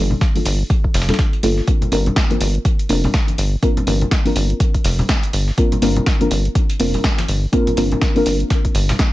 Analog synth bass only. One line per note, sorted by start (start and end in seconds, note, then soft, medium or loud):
0.00 0.14 G1 loud
0.46 0.63 G1 medium
0.94 1.12 F1 loud
1.43 1.61 G1 medium
1.92 2.09 G1 loud
2.41 2.58 G1 medium
2.89 3.07 F1 loud
3.38 3.56 G1 medium
3.87 4.05 G1 loud
4.36 4.53 G1 medium
4.85 5.02 F1 medium
5.33 5.51 G1 medium
5.82 6.00 G1 loud
6.31 6.48 G1 medium
6.80 6.97 F1 loud
7.28 7.46 G1 medium
7.77 7.95 G1 loud
8.26 8.44 G1 medium
8.75 8.92 G1 loud